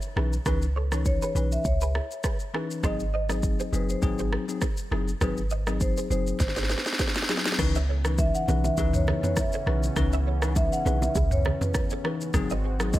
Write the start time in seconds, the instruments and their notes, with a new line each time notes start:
Already playing: marimba C#5
0.02 shaker
0.16 808-style bass B1, tine electric piano E3 C#4 D#4 B4, clean electric guitar E4 G#4, cross-stick
0.33 shaker
0.46 808-style bass C#2, tine electric piano E3 C#4 D#4 B4, clean electric guitar G#4 B4, marimba B4, kick, cross-stick, shaker
0.62 shaker
0.76 clean electric guitar A4 C#5
0.92 tine electric piano E3 C#4 D#4 B4, clean electric guitar A4 C#5, cross-stick, shaker
1.05 marimba C#5, kick, shaker
1.22 clean electric guitar G#4 B4, marimba C#5, shaker
1.35 808-style bass B1, tine electric piano E3 C#4 D#4 B4, clean electric guitar G#4 B4, shaker
1.52 marimba E5, shaker
1.65 808-style bass C#2, marimba C#5, kick, shaker
1.81 clean electric guitar G#4 B4, shaker
1.95 clean electric guitar E4 G#4, cross-stick
2.11 shaker
2.24 clean electric guitar G#4 B4, kick, cross-stick, shaker
2.40 shaker
2.54 tine electric piano E3 C#4 D#4 B4, clean electric guitar E4 G#4, cross-stick
2.71 shaker
2.83 808-style bass G#1, tine electric piano F#3 C4 D#4 G#4, clean electric guitar G#4 C5, marimba D#5, kick, cross-stick, shaker
3.00 shaker
3.14 clean electric guitar C5 D#5, marimba D#5
3.29 tine electric piano F#3 C4 D#4 G#4, clean electric guitar C5 D#5, cross-stick, shaker
3.43 kick, shaker
3.60 clean electric guitar G#4 C5, shaker
3.72 808-style bass F#1, tine electric piano F#3 C4 D#4 G#4, clean electric guitar G#4 C5, marimba B4, shaker
3.89 marimba C5, shaker
4.02 808-style bass G#1, tine electric piano F#3 C4 D#4 G#4, kick, shaker
4.19 clean electric guitar G#4 C5, shaker
4.33 clean electric guitar G#4 B4, cross-stick
4.48 tine electric piano F#3 C4 D#4 G#4, shaker
4.61 clean electric guitar G#4 C5, kick, cross-stick, shaker
4.77 shaker
4.91 808-style bass F#1, tine electric piano F#3 C4 D#4 G#4, clean electric guitar E4 G#4, cross-stick
5.08 shaker
5.21 808-style bass G#1, tine electric piano F#3 C4 D#4 G#4, clean electric guitar G#4 C5, marimba B4, kick, cross-stick, shaker
5.37 shaker
5.50 clean electric guitar C5 D#5, shaker
5.67 tine electric piano F#3 C4 D#4 G#4, clean electric guitar C5 D#5, cross-stick, shaker
5.80 marimba C5, kick, shaker
5.97 clean electric guitar G#4 C5, shaker
6.10 808-style bass F#1, tine electric piano F#3 C4 D#4 G#4, clean electric guitar G#4 C5, marimba C5, shaker
6.27 shaker
6.40 808-style bass G#1, marimba C5, kick, snare, shaker
6.48 snare
6.56 clean electric guitar G#4 C5, snare, shaker
6.63 snare
6.70 clean electric guitar G#4 B4, snare, shaker
6.78 snare
6.86 snare, shaker
6.93 snare
6.99 clean electric guitar G#4 C5, kick, snare, shaker
7.08 snare
7.15 snare, shaker
7.22 snare
7.29 tine electric piano F#3 C4 D#4 G#4, clean electric guitar E4 G#4, snare, shaker
7.37 snare
7.46 snare, shaker
7.52 snare
7.59 808-style bass C#2, analog synth pad C#3 E3 B3 C#4, tine electric piano E3 C#4 D#4 B4, kick, cross-stick, crash, low conga, shaker
7.75 clean electric guitar C#5 E5, shaker
7.89 clean electric guitar A4 C#5
8.05 tine electric piano E3 C#4 D#4 B4, cross-stick, shaker
8.18 marimba E5, kick, high bongo, shaker
8.35 marimba F#5, shaker
8.48 808-style bass B1, tine electric piano E3 C#4 D#4 B4, clean electric guitar G#4 B4, low bongo, shaker
8.64 marimba E5, high bongo, low bongo, shaker
8.77 808-style bass C#2, tine electric piano E3 C#4 D#4 B4, clean electric guitar E4 G#4, kick, low conga, shaker
8.93 marimba C#5, mid tom, shaker
9.07 clean electric guitar G#4 B4, cross-stick, low conga
9.23 tine electric piano E3 C#4 D#4 B4, marimba C#5, mid tom, low bongo, shaker
9.36 marimba E5, kick, cross-stick, high bongo, shaker
9.52 clean electric guitar A4 C#5, shaker
9.66 808-style bass B1, tine electric piano E3 C#4 D#4 B4, clean electric guitar G#4 B4, cross-stick
9.83 shaker
9.96 808-style bass C#2, tine electric piano E3 C#4 D#4 B4, kick, cross-stick, low conga, shaker
10.12 clean electric guitar C#5 E5, shaker
10.27 clean electric guitar A4 C#5
10.42 tine electric piano E3 C#4 D#4 B4, cross-stick, shaker
10.56 marimba E5, kick, high bongo, shaker
10.72 marimba F#5, shaker
10.85 808-style bass B1, tine electric piano E3 C#4 D#4 B4, clean electric guitar G#4 B4, low bongo, shaker
11.02 marimba E5, high bongo, low bongo, shaker
11.15 808-style bass C#2, clean electric guitar E4 G#4, kick, low conga, shaker
11.31 marimba C#5, mid tom, shaker
11.45 clean electric guitar G#4 B4, cross-stick, low conga
11.61 marimba B4, mid tom, low bongo, shaker
11.74 marimba B4, kick, cross-stick, high bongo, shaker
11.90 clean electric guitar A4 C#5, shaker
12.04 tine electric piano E3 C#4 D#4 B4, clean electric guitar G#4 B4, cross-stick
12.21 shaker
12.34 808-style bass G#1, tine electric piano F#3 C4 D#4 G#4, analog synth pad G#3 C4 F#4, kick, cross-stick, low conga, shaker
12.50 clean electric guitar C5 D#5, shaker
12.64 clean electric guitar G#4 C5
12.80 tine electric piano F#3 C4 D#4 G#4, cross-stick, shaker
12.93 marimba D#5, kick, high bongo, shaker